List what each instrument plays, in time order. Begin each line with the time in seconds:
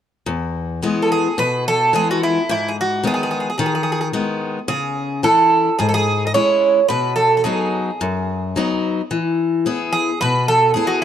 0.26 steel-string acoustic guitar E2
0.82 steel-string acoustic guitar E3 G#3 B3
1.02 bouzouki A4
1.12 bouzouki G#4
1.38 steel-string acoustic guitar B2, bouzouki B4
1.68 bouzouki A4
1.93 steel-string acoustic guitar E3 G#3 B3, bouzouki G#4
2.11 bouzouki F#4
2.23 bouzouki E4
2.49 steel-string acoustic guitar G#2, bouzouki E4
2.68 bouzouki G#4
2.81 bouzouki F#4
3.03 steel-string acoustic guitar D#3 G#3 B3, bouzouki G#4
3.14 bouzouki G#4
3.23 bouzouki G#4
3.31 bouzouki G#4
3.40 bouzouki G#4
3.50 bouzouki G#4
3.58 steel-string acoustic guitar D#3, bouzouki G#4
3.66 bouzouki G#4
3.75 bouzouki G#4
3.83 bouzouki G#4
3.92 bouzouki G#4
4.01 bouzouki G#4
4.13 steel-string acoustic guitar D#3 G#3 B3
4.68 steel-string acoustic guitar C#3, bouzouki G#4
5.23 steel-string acoustic guitar E3 C#4 E4, bouzouki A4
5.79 steel-string acoustic guitar G#2, bouzouki G#4
5.89 bouzouki A4
5.94 bouzouki G#4
6.27 bouzouki D#5
6.34 steel-string acoustic guitar G#3 C#4 E4, bouzouki C#5
6.89 steel-string acoustic guitar B2, bouzouki B4
7.16 bouzouki A4
7.37 bouzouki A4
7.44 steel-string acoustic guitar F#3 B3 D#4, bouzouki G#4
8.01 steel-string acoustic guitar F#2
8.56 steel-string acoustic guitar F#3 B3 D#4
9.11 steel-string acoustic guitar E3
9.66 steel-string acoustic guitar B3 E4 G#4
9.93 bouzouki G#4
10.21 steel-string acoustic guitar B2, bouzouki B4
10.48 bouzouki A4
10.74 steel-string acoustic guitar B3 E4 G#4, bouzouki G#4
10.87 bouzouki F#4